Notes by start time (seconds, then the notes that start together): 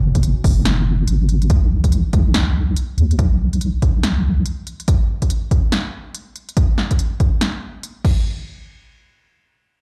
Already playing: F#1 F#4 C#5 G#5
0.15 kick, closed hi-hat
0.23 closed hi-hat
0.44 F#1, kick, open hi-hat
0.65 snare, closed hi-hat
1.08 G#1, closed hi-hat
1.29 closed hi-hat
1.42 closed hi-hat
1.50 B1, kick, closed hi-hat
1.84 kick, closed hi-hat
1.92 closed hi-hat
2.13 B1, kick, closed hi-hat
2.34 snare, closed hi-hat
2.76 closed hi-hat
2.98 D#2, closed hi-hat
3.11 closed hi-hat
3.19 B1, kick, closed hi-hat
3.53 closed hi-hat
3.61 closed hi-hat
3.82 B1, kick, closed hi-hat
4.03 snare, closed hi-hat
4.46 closed hi-hat
4.67 closed hi-hat
4.80 closed hi-hat
4.88 kick, closed hi-hat
5.22 kick, closed hi-hat
5.30 closed hi-hat
5.51 kick, closed hi-hat
5.72 snare, closed hi-hat
6.15 closed hi-hat
6.36 closed hi-hat
6.49 closed hi-hat
6.57 kick, closed hi-hat
6.78 snare
6.91 kick, closed hi-hat
6.99 closed hi-hat
7.20 kick, closed hi-hat
7.41 snare, closed hi-hat
7.83 closed hi-hat
8.05 kick, crash